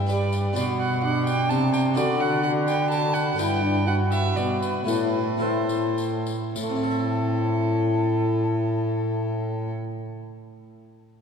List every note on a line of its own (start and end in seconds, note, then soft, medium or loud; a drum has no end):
0.00 0.53 G2 soft
0.00 0.54 G2 medium
0.06 0.52 D4 soft
0.06 0.54 G4 soft
0.06 0.56 G4 medium
0.06 0.54 B4 soft
0.06 0.56 D5 medium
0.06 tambourine soft
0.11 0.56 B5 medium
0.32 tambourine medium
0.53 1.46 B2 soft
0.53 1.92 D4 soft
0.53 1.92 F#4 soft
0.53 1.05 F#4 medium
0.53 1.93 B4 soft
0.53 0.64 D5 medium
0.53 1.06 B5 medium
0.53 tambourine medium
0.57 1.52 B2 medium
0.80 1.03 F#5 medium
1.04 1.97 D4 medium
1.04 1.26 F#5 medium
1.04 1.51 D6 medium
1.27 1.51 G5 medium
1.27 tambourine medium
1.49 1.99 C3 medium
1.49 1.94 C3 medium
1.49 1.73 A5 medium
1.49 1.99 D6 medium
1.49 tambourine soft
1.74 1.82 G5 medium
1.74 tambourine medium
1.94 3.38 D3 medium
1.94 3.35 D3 soft
1.94 3.33 D4 soft
1.94 3.34 F#4 soft
1.94 2.44 F#4 medium
1.94 3.34 A4 soft
1.94 2.22 D5 loud
1.94 4.91 B5 medium
1.94 tambourine medium
2.20 2.42 F#5 medium
2.43 2.77 F#4 medium
2.43 2.51 F#5 medium
2.68 2.90 G5 medium
2.68 tambourine soft
2.91 3.38 F#4 medium
2.91 3.15 A5 loud
2.91 tambourine soft
3.14 3.40 F#5 medium
3.14 tambourine medium
3.35 4.33 G2 soft
3.35 4.35 G2 medium
3.35 4.82 D4 soft
3.35 3.64 E4 medium
3.35 4.83 G4 soft
3.35 4.84 B4 soft
3.35 3.87 G5 medium
3.35 tambourine medium
3.62 3.89 D4 medium
3.87 4.89 F#4 medium
3.87 3.95 F#5 medium
4.12 4.38 E5 medium
4.12 tambourine soft
4.37 4.84 B2 soft
4.37 4.87 B2 medium
4.37 4.62 D5 medium
4.37 tambourine soft
4.62 4.87 B4 medium
4.62 tambourine soft
4.84 6.26 A2 soft
4.84 5.36 A3 soft
4.84 5.38 E4 soft
4.84 6.26 E4 medium
4.84 5.39 A4 soft
4.84 5.44 B4 medium
4.84 tambourine medium
4.89 6.28 A2 medium
4.89 6.27 A5 soft
5.37 6.50 A3 soft
5.37 6.51 E4 soft
5.37 6.51 A4 soft
5.42 6.26 C5 medium
5.69 tambourine soft
5.98 tambourine soft
6.26 tambourine soft
6.55 9.70 A2 soft
6.55 9.70 A2 medium
6.55 9.70 E4 medium
6.55 9.70 A4 medium
6.55 9.71 A5 medium
6.55 tambourine medium
6.63 9.77 A3 soft
6.69 9.84 C4 soft
6.76 9.91 E4 soft
6.83 9.98 A4 soft
6.90 10.05 E5 soft